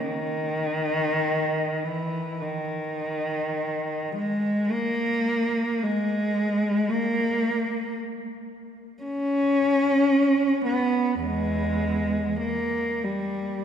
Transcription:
0, 0, Header, 1, 2, 480
1, 0, Start_track
1, 0, Key_signature, 5, "minor"
1, 0, Tempo, 500000
1, 13099, End_track
2, 0, Start_track
2, 0, Title_t, "Cello"
2, 0, Program_c, 0, 42
2, 42, Note_on_c, 0, 51, 50
2, 1756, Note_off_c, 0, 51, 0
2, 1761, Note_on_c, 0, 52, 41
2, 2320, Note_off_c, 0, 52, 0
2, 2322, Note_on_c, 0, 51, 45
2, 3994, Note_on_c, 0, 56, 48
2, 3998, Note_off_c, 0, 51, 0
2, 4520, Note_off_c, 0, 56, 0
2, 4520, Note_on_c, 0, 58, 59
2, 5597, Note_on_c, 0, 56, 54
2, 5598, Note_off_c, 0, 58, 0
2, 6616, Note_on_c, 0, 58, 55
2, 6627, Note_off_c, 0, 56, 0
2, 7645, Note_off_c, 0, 58, 0
2, 8667, Note_on_c, 0, 61, 69
2, 10186, Note_off_c, 0, 61, 0
2, 10226, Note_on_c, 0, 59, 51
2, 10765, Note_on_c, 0, 40, 44
2, 10767, Note_off_c, 0, 59, 0
2, 10769, Note_on_c, 0, 56, 48
2, 11868, Note_off_c, 0, 40, 0
2, 11905, Note_on_c, 0, 58, 44
2, 11908, Note_off_c, 0, 56, 0
2, 12498, Note_off_c, 0, 58, 0
2, 12516, Note_on_c, 0, 55, 40
2, 13099, Note_off_c, 0, 55, 0
2, 13099, End_track
0, 0, End_of_file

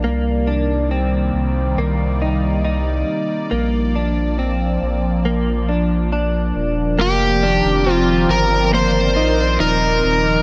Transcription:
0, 0, Header, 1, 5, 480
1, 0, Start_track
1, 0, Tempo, 869565
1, 22, Time_signature, 4, 2, 24, 8
1, 5754, End_track
2, 0, Start_track
2, 0, Title_t, "Electric slide guitar"
2, 0, Program_c, 0, 29
2, 3871, Note_on_c, 0, 67, 93
2, 4373, Note_off_c, 0, 67, 0
2, 4373, Note_on_c, 0, 65, 93
2, 4585, Note_on_c, 0, 70, 95
2, 4608, Note_off_c, 0, 65, 0
2, 4807, Note_off_c, 0, 70, 0
2, 4827, Note_on_c, 0, 72, 108
2, 5282, Note_off_c, 0, 72, 0
2, 5301, Note_on_c, 0, 70, 100
2, 5754, Note_off_c, 0, 70, 0
2, 5754, End_track
3, 0, Start_track
3, 0, Title_t, "Clean electric guitar"
3, 0, Program_c, 1, 27
3, 22, Note_on_c, 1, 58, 78
3, 261, Note_on_c, 1, 62, 74
3, 262, Note_off_c, 1, 58, 0
3, 500, Note_off_c, 1, 62, 0
3, 503, Note_on_c, 1, 60, 64
3, 982, Note_off_c, 1, 60, 0
3, 984, Note_on_c, 1, 58, 73
3, 1223, Note_off_c, 1, 58, 0
3, 1223, Note_on_c, 1, 63, 61
3, 1453, Note_off_c, 1, 63, 0
3, 1460, Note_on_c, 1, 63, 71
3, 1938, Note_on_c, 1, 58, 74
3, 1941, Note_off_c, 1, 63, 0
3, 2180, Note_off_c, 1, 58, 0
3, 2183, Note_on_c, 1, 62, 69
3, 2420, Note_off_c, 1, 62, 0
3, 2422, Note_on_c, 1, 60, 65
3, 2899, Note_on_c, 1, 58, 79
3, 2902, Note_off_c, 1, 60, 0
3, 3139, Note_on_c, 1, 62, 63
3, 3141, Note_off_c, 1, 58, 0
3, 3374, Note_off_c, 1, 62, 0
3, 3381, Note_on_c, 1, 62, 67
3, 3856, Note_on_c, 1, 58, 94
3, 3861, Note_off_c, 1, 62, 0
3, 4099, Note_off_c, 1, 58, 0
3, 4100, Note_on_c, 1, 62, 85
3, 4339, Note_off_c, 1, 62, 0
3, 4341, Note_on_c, 1, 60, 83
3, 4818, Note_on_c, 1, 58, 89
3, 4822, Note_off_c, 1, 60, 0
3, 5057, Note_on_c, 1, 63, 79
3, 5060, Note_off_c, 1, 58, 0
3, 5292, Note_off_c, 1, 63, 0
3, 5298, Note_on_c, 1, 63, 91
3, 5754, Note_off_c, 1, 63, 0
3, 5754, End_track
4, 0, Start_track
4, 0, Title_t, "Analog synth pad"
4, 0, Program_c, 2, 89
4, 0, Note_on_c, 2, 58, 67
4, 0, Note_on_c, 2, 74, 80
4, 26, Note_on_c, 2, 55, 63
4, 27, Note_on_c, 2, 51, 83
4, 29, Note_on_c, 2, 48, 75
4, 1922, Note_off_c, 2, 58, 0
4, 1925, Note_off_c, 2, 51, 0
4, 1925, Note_off_c, 2, 55, 0
4, 1926, Note_off_c, 2, 48, 0
4, 1944, Note_on_c, 2, 53, 74
4, 1948, Note_on_c, 2, 58, 69
4, 3839, Note_off_c, 2, 74, 0
4, 3844, Note_off_c, 2, 53, 0
4, 3846, Note_off_c, 2, 58, 0
4, 3858, Note_on_c, 2, 70, 86
4, 3860, Note_on_c, 2, 53, 82
4, 3860, Note_on_c, 2, 60, 68
4, 3860, Note_on_c, 2, 74, 78
4, 3861, Note_on_c, 2, 51, 80
4, 5754, Note_off_c, 2, 51, 0
4, 5754, Note_off_c, 2, 53, 0
4, 5754, Note_off_c, 2, 60, 0
4, 5754, Note_off_c, 2, 70, 0
4, 5754, Note_off_c, 2, 74, 0
4, 5754, End_track
5, 0, Start_track
5, 0, Title_t, "Sub bass"
5, 0, Program_c, 3, 38
5, 24, Note_on_c, 3, 36, 97
5, 721, Note_off_c, 3, 36, 0
5, 739, Note_on_c, 3, 36, 97
5, 968, Note_off_c, 3, 36, 0
5, 978, Note_on_c, 3, 36, 100
5, 1678, Note_off_c, 3, 36, 0
5, 1940, Note_on_c, 3, 34, 89
5, 2639, Note_off_c, 3, 34, 0
5, 2661, Note_on_c, 3, 34, 90
5, 3600, Note_off_c, 3, 34, 0
5, 3617, Note_on_c, 3, 27, 81
5, 3847, Note_off_c, 3, 27, 0
5, 3856, Note_on_c, 3, 29, 117
5, 4201, Note_off_c, 3, 29, 0
5, 4218, Note_on_c, 3, 29, 99
5, 4562, Note_off_c, 3, 29, 0
5, 4573, Note_on_c, 3, 31, 101
5, 5057, Note_on_c, 3, 34, 92
5, 5065, Note_off_c, 3, 31, 0
5, 5288, Note_off_c, 3, 34, 0
5, 5299, Note_on_c, 3, 27, 94
5, 5528, Note_off_c, 3, 27, 0
5, 5542, Note_on_c, 3, 27, 87
5, 5754, Note_off_c, 3, 27, 0
5, 5754, End_track
0, 0, End_of_file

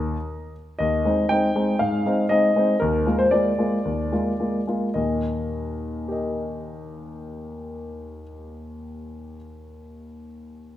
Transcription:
0, 0, Header, 1, 2, 480
1, 0, Start_track
1, 0, Key_signature, -3, "major"
1, 0, Tempo, 501253
1, 764, Time_signature, 4, 2, 24, 8
1, 2679, Tempo, 520833
1, 3639, Tempo, 561272
1, 9565, End_track
2, 0, Start_track
2, 0, Title_t, "Grand piano"
2, 0, Program_c, 0, 0
2, 0, Note_on_c, 0, 39, 47
2, 0, Note_on_c, 0, 75, 54
2, 0, Note_on_c, 0, 82, 55
2, 0, Note_on_c, 0, 87, 71
2, 140, Note_off_c, 0, 39, 0
2, 494, Note_off_c, 0, 75, 0
2, 494, Note_off_c, 0, 82, 0
2, 526, Note_off_c, 0, 87, 0
2, 752, Note_on_c, 0, 75, 60
2, 765, Note_on_c, 0, 39, 47
2, 996, Note_off_c, 0, 39, 0
2, 1006, Note_on_c, 0, 56, 37
2, 1013, Note_on_c, 0, 60, 37
2, 1016, Note_on_c, 0, 63, 37
2, 1177, Note_off_c, 0, 56, 0
2, 1181, Note_off_c, 0, 60, 0
2, 1183, Note_off_c, 0, 63, 0
2, 1236, Note_off_c, 0, 75, 0
2, 1237, Note_on_c, 0, 79, 66
2, 1249, Note_on_c, 0, 56, 36
2, 1254, Note_on_c, 0, 60, 37
2, 1256, Note_on_c, 0, 63, 44
2, 1418, Note_off_c, 0, 56, 0
2, 1421, Note_off_c, 0, 60, 0
2, 1422, Note_off_c, 0, 63, 0
2, 1489, Note_on_c, 0, 56, 41
2, 1492, Note_on_c, 0, 60, 36
2, 1495, Note_on_c, 0, 63, 44
2, 1656, Note_off_c, 0, 56, 0
2, 1658, Note_off_c, 0, 60, 0
2, 1660, Note_off_c, 0, 63, 0
2, 1714, Note_off_c, 0, 79, 0
2, 1717, Note_on_c, 0, 77, 58
2, 1728, Note_on_c, 0, 44, 46
2, 1954, Note_off_c, 0, 44, 0
2, 1972, Note_on_c, 0, 56, 38
2, 1973, Note_on_c, 0, 60, 39
2, 1977, Note_on_c, 0, 63, 45
2, 2138, Note_off_c, 0, 56, 0
2, 2139, Note_off_c, 0, 60, 0
2, 2141, Note_off_c, 0, 63, 0
2, 2195, Note_off_c, 0, 77, 0
2, 2195, Note_on_c, 0, 75, 66
2, 2209, Note_on_c, 0, 56, 38
2, 2214, Note_on_c, 0, 63, 40
2, 2215, Note_on_c, 0, 60, 39
2, 2377, Note_off_c, 0, 56, 0
2, 2380, Note_off_c, 0, 63, 0
2, 2381, Note_off_c, 0, 60, 0
2, 2452, Note_on_c, 0, 56, 41
2, 2455, Note_on_c, 0, 60, 46
2, 2459, Note_on_c, 0, 63, 43
2, 2621, Note_off_c, 0, 56, 0
2, 2623, Note_off_c, 0, 60, 0
2, 2626, Note_off_c, 0, 63, 0
2, 2678, Note_on_c, 0, 70, 59
2, 2679, Note_off_c, 0, 75, 0
2, 2695, Note_on_c, 0, 39, 55
2, 2917, Note_off_c, 0, 39, 0
2, 2922, Note_on_c, 0, 56, 41
2, 2928, Note_on_c, 0, 58, 36
2, 2931, Note_on_c, 0, 65, 42
2, 2998, Note_off_c, 0, 70, 0
2, 3037, Note_on_c, 0, 72, 64
2, 3091, Note_off_c, 0, 56, 0
2, 3095, Note_off_c, 0, 58, 0
2, 3097, Note_off_c, 0, 65, 0
2, 3151, Note_on_c, 0, 74, 65
2, 3155, Note_off_c, 0, 72, 0
2, 3159, Note_on_c, 0, 56, 38
2, 3162, Note_on_c, 0, 58, 38
2, 3167, Note_on_c, 0, 65, 37
2, 3330, Note_off_c, 0, 56, 0
2, 3333, Note_off_c, 0, 58, 0
2, 3336, Note_off_c, 0, 65, 0
2, 3405, Note_on_c, 0, 56, 37
2, 3407, Note_on_c, 0, 58, 37
2, 3411, Note_on_c, 0, 65, 39
2, 3578, Note_off_c, 0, 56, 0
2, 3579, Note_off_c, 0, 58, 0
2, 3582, Note_off_c, 0, 65, 0
2, 3650, Note_on_c, 0, 39, 39
2, 3869, Note_off_c, 0, 39, 0
2, 3881, Note_on_c, 0, 56, 36
2, 3883, Note_on_c, 0, 58, 35
2, 3885, Note_on_c, 0, 65, 40
2, 4047, Note_off_c, 0, 56, 0
2, 4049, Note_off_c, 0, 58, 0
2, 4050, Note_off_c, 0, 65, 0
2, 4116, Note_on_c, 0, 58, 28
2, 4117, Note_on_c, 0, 56, 30
2, 4121, Note_on_c, 0, 65, 31
2, 4287, Note_off_c, 0, 58, 0
2, 4288, Note_off_c, 0, 56, 0
2, 4291, Note_off_c, 0, 65, 0
2, 4314, Note_off_c, 0, 74, 0
2, 4352, Note_on_c, 0, 56, 29
2, 4357, Note_on_c, 0, 58, 30
2, 4362, Note_on_c, 0, 65, 35
2, 4526, Note_off_c, 0, 56, 0
2, 4529, Note_off_c, 0, 58, 0
2, 4533, Note_off_c, 0, 65, 0
2, 4580, Note_on_c, 0, 75, 38
2, 4589, Note_on_c, 0, 39, 32
2, 4591, Note_on_c, 0, 46, 33
2, 4794, Control_c, 0, 64, 127
2, 5558, Note_on_c, 0, 67, 31
2, 5577, Note_off_c, 0, 75, 0
2, 5577, Note_on_c, 0, 70, 26
2, 5590, Note_on_c, 0, 75, 32
2, 7375, Note_off_c, 0, 39, 0
2, 7377, Note_off_c, 0, 46, 0
2, 8344, Note_off_c, 0, 67, 0
2, 8363, Note_off_c, 0, 70, 0
2, 8376, Note_off_c, 0, 75, 0
2, 9565, End_track
0, 0, End_of_file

